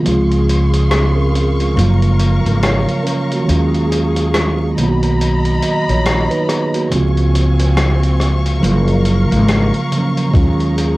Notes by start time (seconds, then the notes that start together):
0.02 C#3 F3 G#3 G#4 F5 C6 C#6
0.06 C#2 C4 F4, closed hi-hat
0.32 closed hi-hat
0.49 closed hi-hat
0.74 closed hi-hat
0.91 C4 G#4, cross-stick, closed hi-hat
1.16 C#4 A#4
1.33 C4 G#4, closed hi-hat
1.60 G#3 F4, closed hi-hat
1.74 F#1 C#3 F3 F#3 A#4 A#5
1.79 A#3 F4, closed hi-hat
2.02 closed hi-hat
2.20 closed hi-hat
2.45 G#1, closed hi-hat
2.63 F4 C#5, cross-stick, closed hi-hat
2.89 closed hi-hat
3.03 C#4 A#4, closed hi-hat
3.32 A#3 F#4, closed hi-hat
3.44 D#3 F#3 G#3 G#4
3.48 D#2 C#4 F4, closed hi-hat
3.74 closed hi-hat
3.92 closed hi-hat
4.16 closed hi-hat
4.34 cross-stick, closed hi-hat
4.75 B1 D#3 F#3 A#3 D#5 A#5 B5, closed hi-hat
4.81 B3 F4
4.89 F#4
5.03 closed hi-hat
5.21 closed hi-hat
5.45 closed hi-hat
5.62 F#4 D#5, closed hi-hat
5.88 A#1 F4 C#5, closed hi-hat
6.06 cross-stick, closed hi-hat
6.30 D#4 B4, closed hi-hat
6.49 B3 G#4, cross-stick, closed hi-hat
6.74 A#3 F#4, closed hi-hat
6.89 C#2 C#3 F3 G#3 C4 F5 G#5 C#6, closed hi-hat
6.95 C4 F4
7.17 closed hi-hat
7.35 closed hi-hat
7.59 closed hi-hat
7.77 cross-stick, closed hi-hat
8.03 closed hi-hat
8.20 cross-stick, closed hi-hat
8.46 closed hi-hat
8.59 F#1 C#3 F3 F#3 A#4 A#5
8.64 A#3 F4, closed hi-hat
8.88 closed hi-hat
9.05 closed hi-hat
9.31 G#1, closed hi-hat
9.49 cross-stick, closed hi-hat
9.74 closed hi-hat
9.91 C#3 F3 F#3, closed hi-hat
9.96 A#3 C#4
10.17 closed hi-hat
10.29 D#3 F#3 G#3 G#4
10.34 D#2 C#4 F4, kick, closed hi-hat
10.60 closed hi-hat
10.78 closed hi-hat